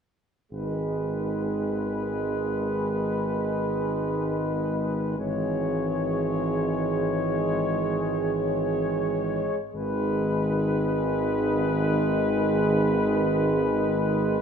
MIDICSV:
0, 0, Header, 1, 6, 480
1, 0, Start_track
1, 0, Key_signature, 5, "minor"
1, 0, Tempo, 500000
1, 13841, End_track
2, 0, Start_track
2, 0, Title_t, "Trumpet section"
2, 0, Program_c, 0, 61
2, 508, Note_on_c, 0, 71, 34
2, 4940, Note_off_c, 0, 71, 0
2, 4980, Note_on_c, 0, 73, 37
2, 9186, Note_off_c, 0, 73, 0
2, 9349, Note_on_c, 0, 71, 53
2, 13798, Note_off_c, 0, 71, 0
2, 13841, End_track
3, 0, Start_track
3, 0, Title_t, "French horn section"
3, 0, Program_c, 1, 60
3, 499, Note_on_c, 1, 68, 34
3, 4936, Note_off_c, 1, 68, 0
3, 4988, Note_on_c, 1, 68, 33
3, 9201, Note_off_c, 1, 68, 0
3, 9364, Note_on_c, 1, 68, 48
3, 13805, Note_off_c, 1, 68, 0
3, 13841, End_track
4, 0, Start_track
4, 0, Title_t, "Trombone section"
4, 0, Program_c, 2, 61
4, 506, Note_on_c, 2, 56, 38
4, 4939, Note_off_c, 2, 56, 0
4, 4976, Note_on_c, 2, 56, 38
4, 9186, Note_off_c, 2, 56, 0
4, 9349, Note_on_c, 2, 56, 45
4, 13798, Note_off_c, 2, 56, 0
4, 13841, End_track
5, 0, Start_track
5, 0, Title_t, "Trombone"
5, 0, Program_c, 3, 57
5, 501, Note_on_c, 3, 51, 35
5, 4936, Note_off_c, 3, 51, 0
5, 4979, Note_on_c, 3, 52, 38
5, 9051, Note_off_c, 3, 52, 0
5, 9343, Note_on_c, 3, 51, 49
5, 13795, Note_off_c, 3, 51, 0
5, 13841, End_track
6, 0, Start_track
6, 0, Title_t, "Tuba"
6, 0, Program_c, 4, 58
6, 499, Note_on_c, 4, 32, 37
6, 4935, Note_off_c, 4, 32, 0
6, 4977, Note_on_c, 4, 32, 42
6, 9050, Note_off_c, 4, 32, 0
6, 9354, Note_on_c, 4, 32, 51
6, 13800, Note_off_c, 4, 32, 0
6, 13841, End_track
0, 0, End_of_file